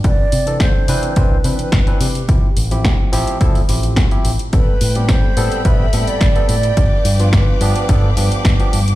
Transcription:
<<
  \new Staff \with { instrumentName = "String section" } { \time 4/4 \key a \minor \tempo 4 = 107 << { r1 | r1 | <a' b''>1 | <b' f'' d'''>1 | } \\ { r1 | r1 | g''1~ | g''1 | } >> }
  \new Staff \with { instrumentName = "Flute" } { \time 4/4 \key a \minor d''4 c''4 b'4. g'8~ | g'8 r2. r8 | b'4 c''4 e''8. d''8. d''8~ | d''8. b'16 b'4 r2 | }
  \new Staff \with { instrumentName = "Tine electric piano" } { \time 4/4 \key a \minor <e c' d' b'>16 r8 <e c' d' a'>8. <e c' d' b'>8 <e c' d' c''>16 r16 <e c' d' b'>8. <e c' d' b'>16 r8 | <f c' e' g'>16 r8 <f c' e' g'>8. <f c' e' g'>8 <f c' e' a'>16 r16 <f c' e' g'>8. <f c' e' g'>16 r8 | <g b c' a'>16 r8 <g b c' g'>8. <g b c' a'>8 <g b c' b'>16 r16 <g b c' a'>8. <g b c' a'>16 r8 | <f b d' g'>16 r8 <f b d' f'>8. <f b d' g'>8 <f b d' a'>16 r16 <f b d' g'>8. <f b d' g'>16 r8 | }
  \new Staff \with { instrumentName = "Fingered electric bass" } { \clef bass \time 4/4 \key a \minor c,8 c8 c,8 c8 c,8 c8 c,8 c8 | d,8 a,,8 d,8 a,,8 d,8 a,,8 d,8 a,,8 | a,,8 a,8 a,,8 a,8 a,,8 a,8 a,,8 a,8 | g,,8 g,8 g,,8 g,8 g,,8 g,8 g,,8 g,8 | }
  \new DrumStaff \with { instrumentName = "Drums" } \drummode { \time 4/4 <hh bd>8 hho16 hh16 <hh bd sn>8 hho16 hh16 <hh bd>8 hho16 hh16 <hh bd sn>16 hh16 hho16 hh16 | <hh bd>8 hho16 hh16 <hh bd sn>8 hho16 hh16 <hh bd>16 hho16 hho16 hh16 <hh bd sn>16 hh16 hho16 hh16 | <hh bd>8 hho16 hh16 <hh bd sn>8 hho16 hh16 <hh bd>8 hho16 hh16 <hh bd sn>16 hh16 hho16 hh16 | <hh bd>8 hho16 hh16 <hh bd sn>8 hho16 hh16 <hh bd>8 hho16 hh16 <hh bd sn>16 hh16 hho16 hh16 | }
>>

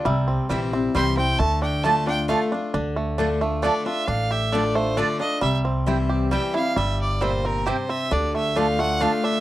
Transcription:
<<
  \new Staff \with { instrumentName = "Fiddle" } { \time 3/4 \key d \minor \tempo 4 = 134 r2 c'''8 g''8 | a''8 g''8 a''8 g''8 f''8 r8 | r2 d''8 e''8 | f''8 e''8 d''8 c''8 d''8 ees''8 |
e''8 r4. g''8 f''8 | e''8 d''8 c''8 bes'8 c''8 e''8 | d''8 e''8 f''8 fis''8 f''8 e''8 | }
  \new Staff \with { instrumentName = "Resonator guitar played with a steel bar" } { \time 3/4 \key d \minor e''4.~ e''16 r4 r16 | r2. | r2. | r2. |
r2. | r2. | r2. | }
  \new Staff \with { instrumentName = "Mandolin" } { \time 3/4 \key d \minor r4 <c' e' c'' g''>8 r8 <c' e' c'' g''>8 r8 | r4 <a f' d'' a''>8 r8 <a f' d'' a''>8 r8 | r4 <a f' d'' a''>8 r8 <a f' d'' a''>8 r8 | r4 <a f' d'' a''>8 r8 <a f' d'' a''>8 r8 |
r4 <c' e' c'' g''>8 r8 <c' e' c'' g''>8 r8 | r4 <c' e' c'' g''>8 r8 <c' e' c'' g''>8 r8 | r4 <a f' d'' a''>8 r8 <a f' d'' a''>8 r8 | }
  \new Staff \with { instrumentName = "Five-string banjo" } { \time 3/4 \key d \minor g8 c'8 g8 c'8 g8 c'8 | a8 d'8 a8 d'8 a8 d'8 | d'8 a8 d'8 a8 d'8 d'8 | d'8 g'8 d'8 a8 d'8 d'8 |
g8 c'8 e'8 g'8 g8 e'8 | g4 g8 c'8 g'8 c'8 | d'8 a8 d'8 a8 d'8 d'8 | }
  \new Staff \with { instrumentName = "Steel-string acoustic guitar" } { \time 3/4 \key d \minor << { r4 <e g c' e'>8 <c' e'>8 <e g c' e'>8 <c' e'>8 | r4 <d a d' f'>8 <d' f'>8 <d a d' f'>8 <d' f'>8 | r4 <d a d' f'>8 <d' f'>8 <d a d' f'>8 <d' f'>8 | r4 <d a d' f'>8 <d' f'>8 <d a d' f'>8 <d' f'>8 |
r4 <e g c' e'>4 <e g c' e'>8 <c' e'>8 | r2. | r4 <d a d' f'>8 <d' f'>8 <d a d' f'>4 | } \\ { c2 r4 | d2 r4 | d2 r4 | a,2 r4 |
c2 r4 | g,4 bes,4 c4 | d2 r4 | } >> }
  \new Staff \with { instrumentName = "Upright bass" } { \clef bass \time 3/4 \key d \minor c,4 bes,,4 c,4 | d,2. | d,2. | a,,2. |
c,2. | g,,2. | d,2. | }
>>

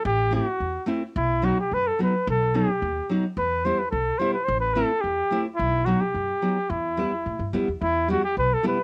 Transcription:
<<
  \new Staff \with { instrumentName = "Cornet" } { \time 2/4 \key e \minor \tempo 4 = 108 g'8 fis'4 r8 | e'8 fis'16 g'16 b'16 a'16 b'8 | a'8 g'4 r8 | b'8 c''16 b'16 a'8 c''16 b'16 |
c''16 b'16 a'8 g'8. r16 | e'8 fis'16 g'4~ g'16 | e'4. r8 | e'8 fis'16 g'16 b'16 a'16 b'8 | }
  \new Staff \with { instrumentName = "Nylon-string guitar" } { \time 2/4 \key e \minor r8 <a c' e'>16 r8. <a c' e'>16 r16 | r8 <fis b dis'>16 r8. <fis b dis'>16 r16 | r8 <fis b dis'>16 r8. <fis b dis'>16 r16 | r8 <g b e'>16 r8. <g b e'>16 r16 |
r8 <a c' e'>16 r8. <a c' e'>16 r16 | r8 <fis b dis'>16 r8. <fis b dis'>16 r16 | r8 <g b e'>16 r8. <g b e'>16 r16 | r8 <g b e'>16 r8. <g b e'>16 r16 | }
  \new Staff \with { instrumentName = "Upright bass" } { \clef bass \time 2/4 \key e \minor a,,4 e,8 r8 | b,,4 fis,8 r8 | b,,4 dis,8 r8 | e,4 b,,8 r8 |
a,,4 e,8 r8 | b,,4 fis,8 r8 | e,4 a,16 g,16 fis,16 e,16 | e,4 b,,8 r8 | }
>>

